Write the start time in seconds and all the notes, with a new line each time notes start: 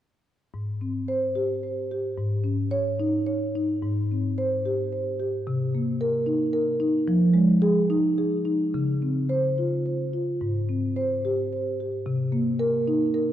0.54 G#2
0.81 C4
1.08 C5
1.35 G4
1.63 C5
1.91 G4
2.18 G#2
2.44 C#4
2.71 C#5
3.00 D#4
3.27 C#5
3.55 D#4
3.83 G#2
4.12 C4
4.38 C5
4.65 G4
4.92 C5
5.20 G4
5.47 C3
5.75 A#3
6.01 A#4
6.26 D#4
6.53 A#4
6.80 D#4
7.08 F3
7.34 G#3
7.62 G#4
7.90 D#4
8.18 G#4
8.45 D#4
8.74 C#3
9.02 C4
9.29 C5
9.58 F4
9.86 C5
10.13 F4
10.41 G#2
10.69 C4
10.96 C5
11.25 G4
11.53 C5
11.80 G4
12.06 C3
12.32 A#3
12.59 A#4
12.88 D#4
13.14 A#4